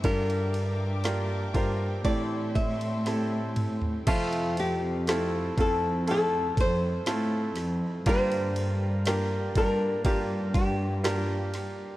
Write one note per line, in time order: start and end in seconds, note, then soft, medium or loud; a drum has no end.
0.00 1.50 G2 loud
0.00 0.14 C4 medium
0.00 0.99 D4 medium
0.00 0.14 E4 medium
0.00 0.14 A4 medium
0.00 2.02 E5 medium
0.00 ride medium
0.04 2.04 G2 medium
0.04 1.51 G2 medium
0.04 1.51 D3 medium
0.04 0.99 F4 medium
0.04 0.99 G4 medium
0.04 2.03 A#4 medium
0.04 1.00 A#4 medium
0.04 1.01 A#4 medium
0.04 4.04 G5 medium
0.04 2.03 D6 medium
0.04 kick loud
0.29 ride soft
0.54 ride medium
1.04 2.15 A#3 medium
1.04 1.52 D4 medium
1.04 1.53 D4 medium
1.04 1.52 F4 medium
1.04 1.52 G4 medium
1.04 2.16 G4 medium
1.04 1.52 A#4 medium
1.04 snare loud
1.04 ride medium
1.54 2.01 G2 medium
1.54 2.02 D4 medium
1.54 2.15 D4 medium
1.54 2.02 F4 medium
1.54 2.02 G4 medium
1.54 2.04 A#4 medium
1.54 2.03 C5 medium
1.54 kick medium
1.54 ride medium
2.04 4.03 A2 loud
2.04 4.18 A2 medium
2.04 3.53 A2 medium
2.04 3.53 E3 medium
2.04 3.01 C4 medium
2.04 3.01 E4 medium
2.04 3.01 G4 medium
2.04 3.01 A4 medium
2.04 4.06 A4 medium
2.04 2.52 D5 medium
2.04 4.06 E5 medium
2.04 4.06 C6 medium
2.04 kick medium
2.04 ride medium
2.55 3.53 E5 medium
2.55 kick medium
2.55 ride medium
2.81 ride soft
3.06 4.03 C4 medium
3.06 4.03 E4 medium
3.06 4.03 G4 medium
3.06 5.08 A4 medium
3.06 4.03 A4 medium
3.06 snare medium
3.06 ride medium
3.57 mid tom medium
3.57 ride medium
3.82 floor tom medium
4.07 5.54 F2 loud
4.07 5.54 C3 medium
4.07 8.09 F3 medium
4.07 5.03 A3 loud
4.07 5.03 C4 medium
4.07 5.03 F4 medium
4.07 4.59 F4 loud
4.07 5.03 A4 loud
4.07 5.03 E5 medium
4.07 kick loud
4.07 crash loud
4.07 ride medium
4.33 ride soft
4.57 5.62 G4 medium
4.57 ride medium
5.07 5.55 A3 medium
5.07 8.16 C4 medium
5.07 5.55 C4 medium
5.07 5.56 E4 medium
5.07 5.56 F4 medium
5.07 5.56 A4 medium
5.07 7.06 A4 medium
5.07 snare loud
5.07 ride medium
5.58 6.54 F2 medium
5.58 6.05 A3 medium
5.58 6.05 C4 medium
5.58 8.16 E4 medium
5.58 6.05 E4 medium
5.58 6.06 F4 medium
5.58 6.06 A4 medium
5.58 6.10 A4 medium
5.58 kick medium
5.58 ride medium
6.07 7.02 A3 medium
6.07 7.02 C4 medium
6.07 7.02 E4 medium
6.07 7.02 F4 medium
6.07 7.02 A4 medium
6.07 6.56 A4 loud
6.07 ride medium
6.57 7.04 F2 loud
6.57 8.08 C5 loud
6.57 kick loud
6.57 ride medium
7.07 7.53 A2 medium
7.07 8.01 A3 medium
7.07 8.02 C4 medium
7.07 8.02 E4 medium
7.07 8.02 F4 medium
7.07 8.17 A4 medium
7.07 8.02 A4 medium
7.07 snare loud
7.07 ride medium
7.56 8.03 F2 loud
7.56 snare soft
7.56 ride medium
8.06 11.97 G2 medium
8.06 9.52 G2 loud
8.06 9.52 G2 medium
8.06 9.52 D3 medium
8.06 9.01 A#3 loud
8.06 9.01 D4 medium
8.06 9.01 F4 medium
8.06 9.01 G4 medium
8.06 9.02 A#4 loud
8.06 9.03 C5 loud
8.06 kick loud
8.06 ride medium
8.32 ride soft
8.56 ride medium
9.05 11.97 A#3 medium
9.05 9.53 A#3 medium
9.05 9.53 D4 medium
9.05 9.55 D4 medium
9.05 9.54 F4 medium
9.05 9.54 G4 medium
9.05 11.03 G4 medium
9.05 9.54 A#4 medium
9.05 snare loud
9.05 ride medium
9.55 10.01 G2 loud
9.55 10.03 A#3 medium
9.55 11.97 D4 medium
9.55 10.03 D4 medium
9.55 10.03 F4 medium
9.55 10.03 G4 medium
9.55 10.03 A#4 medium
9.55 10.06 A#4 loud
9.55 kick medium
9.55 ride medium
10.05 11.97 G2 loud
10.05 10.99 A#3 medium
10.05 10.99 D4 medium
10.05 10.99 F4 medium
10.05 10.99 G4 medium
10.05 10.19 G4 medium
10.05 10.99 A#4 medium
10.05 kick loud
10.05 ride medium
10.54 11.21 G4 medium
10.54 kick loud
10.54 ride medium
11.04 11.97 A#3 medium
11.04 11.97 D4 medium
11.04 11.97 F4 medium
11.04 11.97 G4 medium
11.04 11.97 A#4 medium
11.04 snare loud
11.04 ride medium
11.21 11.49 F4 medium
11.54 snare soft
11.54 ride medium